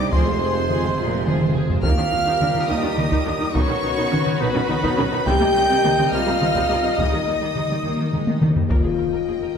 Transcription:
Already playing: C3 G3 D4 D5 D6
0.00 G3 D#4 G4 D#5
0.11 F1 F2 F3 G#3 C4 G#4 C5 C6, taiko
0.27 G#3 F4 C5
0.40 F3 C4 G#4
0.55 G#3 F4 C5
0.69 F3 C4 G#4, taiko mid
0.84 G#3 F4 C5, taiko mid
0.98 F1 A#2 F3 C4 G#4
1.11 G#3 F4 C5
1.26 G#2 F3 C4 G#4, taiko mid
1.41 G#3 F4 C5, taiko mid
1.55 F2 F3 C4 G#4, taiko mid
1.69 G#3 F4 C5, taiko low
1.83 D#2 D#3 G3 D#4 F4 G4 A#4 F5 F6, taiko
1.98 D#2 D#3 D4
2.12 D#2 D#3 D#4
2.27 D#2 D#3 D#4
2.40 D#2 D#3 D4, taiko mid
2.55 D#2 D#3 D#4, taiko mid
2.68 D#2 A#2 D#3 D#4 D#5 D#6
2.83 D#2 D#3 D4
2.97 D#2 D#3 D#4, taiko mid
3.11 D#2 D#3 D#4, taiko
3.25 D#2 D#3 D4
3.39 D#2 D#3 D#4
3.53 B1 B2 D#3 F#3 C#4 D#4 F#4 B4 C#5 C#6, taiko
3.68 B2 D#3 C#4
3.83 B1 B2 D#3 D#4
3.97 B2 D#3 D#4
4.11 B1 B2 D#3 C#4, taiko mid
4.26 B2 D#3 D#4, taiko mid
4.40 B1 B2 D#3 B3 D#4 B4 B5
4.54 B2 D#3 C#4
4.68 B1 B2 D#3 D#4, taiko mid
4.83 B2 D#3 D#4, taiko
4.97 B1 B2 D#3 C#4
5.12 B2 D#3 D#4
5.26 C2 C3 G3 C4 D#4 G4 D#5 G5 G6, taiko
5.41 C3 G3 A#3
5.54 C2 C3 G3 C4
5.69 C3 G3 C4
5.84 C2 C3 G3 A#3, taiko mid
5.98 C3 G3 C4, taiko mid
6.12 C2 C3 G3 C4 F4 F5 F6
6.26 C3 G3 A#3
6.41 C2 C3 G3 C4, taiko mid
6.54 C3 G3 C4, taiko
6.69 C2 C3 G3 A#3
6.82 C3 G3 C4
6.98 D#2 D#3 G3 A#3 D#4 D#5 D#6, taiko
7.06 D#3
7.11 D#3 G3 G#3
7.22 D#3
7.26 D#2 D#3 G3 A#3
7.37 D#3 G3 A#3
7.42 D#3
7.52 D#2 D#3 G3 G#3, taiko mid
7.57 D#3
7.67 D#3 G3 A#3, taiko mid
7.75 D#3
7.82 D#2 D#3 A#3
7.89 D#3
7.97 D#3
8.05 D#3
8.12 D#2 D#3 G#3, taiko mid
8.19 D#3
8.27 D#3, taiko high
8.33 D#3
8.41 D#2 D#3 G3, taiko mid
8.49 D#3
8.56 D#3, taiko low
8.70 D#2 F4 A#4 D#5 G5, taiko, impact
8.83 D#2 G#4
8.98 D#2 A#4
9.13 D#2 A#4
9.27 D#2 G#4
9.41 D#2 A#4

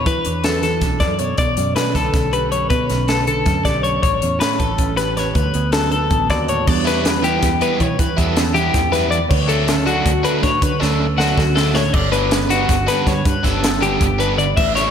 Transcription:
Already playing: E3 F#3 E4
0.06 E2 E3 B4, kick, closed hi-hat
0.25 E2 D4, closed hi-hat
0.44 F#3 A4, snare, closed hi-hat
0.62 E3 A4, snare, closed hi-hat
0.81 B1 D4, kick, snare, closed hi-hat
1.00 F#2 D4 D5, kick, snare, closed hi-hat
1.10 E4
1.19 B2 C#5, closed hi-hat
1.38 B1 B2 D5, kick, closed hi-hat
1.57 F#2 C#4, closed hi-hat
1.76 F#3 B4, snare, closed hi-hat
1.85 A3
1.93 B1 D3 A4, kick, snare, closed hi-hat
2.14 B1 C#4, kick, snare, closed hi-hat
2.33 G4 B4, closed hi-hat
2.52 F#2 C#5, closed hi-hat
2.70 B2 B4, kick, closed hi-hat
2.90 B1 C#4, snare, closed hi-hat
3.08 A3 A4, snare, closed hi-hat
3.27 D3 A4, closed hi-hat
3.46 F#2 C#4, kick, snare, closed hi-hat
3.65 B1 G4 D5, kick, snare, closed hi-hat
3.83 F#2 C#5, closed hi-hat
4.02 A1 A2 C#5, kick, closed hi-hat
4.22 E2 C#4, closed hi-hat
4.40 A3 B4, snare, closed hi-hat
4.59 A1 E3 A4, kick, closed hi-hat
4.78 A1 C#4, kick, closed hi-hat
4.97 G4 B4, snare, closed hi-hat
5.15 E2 C#5, snare, closed hi-hat
5.35 D2 B4, kick, closed hi-hat
5.54 D2 B3, closed hi-hat
5.72 F#3 A4, snare, closed hi-hat
5.91 D3 A4, closed hi-hat
6.10 A1 B3, kick, closed hi-hat
6.30 D#2 F#4 D5, kick, snare, closed hi-hat
6.48 A2 C#5, closed hi-hat
6.66 E2 E3 G3 B3 D4 D5, kick, crash
6.85 E3 G3 B3 E4 B4, snare, closed hi-hat
7.04 B3, snare, closed hi-hat
7.22 E3 G3 B3 E4 G4, closed hi-hat
7.43 E2, kick, snare, closed hi-hat
7.61 E3 G3 B3 E4 B4, closed hi-hat
7.79 B2 E3 C#5, kick, closed hi-hat
7.98 E2 E3 B4, kick, closed hi-hat
8.17 E2 E3 G3 B3 E4 A4, kick, closed hi-hat
8.36 B3, snare, closed hi-hat
8.54 E3 G3 B3 E4 G4, closed hi-hat
8.73 E2 G2, kick, snare, closed hi-hat
8.91 F#2 E3 G3 B3 E4 B4, snare, closed hi-hat
9.10 E2 D5, closed hi-hat
9.29 D2 C#5, kick, crash
9.48 D3 F#3 A3 D4 A4, closed hi-hat
9.68 C#4, snare, closed hi-hat
9.86 D3 F#3 A3 D4 F#4, closed hi-hat
10.06 D2, kick, closed hi-hat
10.23 D3 F#3 A3 D4 B4, closed hi-hat
10.42 A2 D3 C#5, kick, snare, closed hi-hat
10.60 D2 D3 B4, kick, closed hi-hat
10.80 D2 D3 F#3 A3 D4 A4, snare
11.00 C#4
11.18 D3 F#3 A3 D4 F#4, snare
11.38 D2, kick, snare
11.55 D3 F#3 A3 D4 A4, snare
11.75 A2 C#5, snare
11.93 G1 G2 D5, kick, crash
12.12 D3 G3 B3 D4 B4, closed hi-hat
12.31 B3, snare, closed hi-hat
12.49 D3 G3 B3 D4 F#4, closed hi-hat
12.69 G1, kick, snare, closed hi-hat
12.87 D3 G3 B3 D4 B4, snare, closed hi-hat
13.06 G2 D3 C#5, kick, snare, closed hi-hat
13.25 G2 B4, kick, closed hi-hat
13.43 G1 D3 G3 B3 D4 A4, kick, snare, closed hi-hat
13.63 B3, snare, closed hi-hat
13.80 D3 G3 B3 D4 G4, closed hi-hat
14.01 G1, kick, closed hi-hat
14.18 D3 G3 B3 D4 B4, closed hi-hat
14.38 D3 D5, closed hi-hat
14.57 A1 A2 E5, kick, crash
14.75 E3 G3 C#4 E4 C#5, snare, closed hi-hat

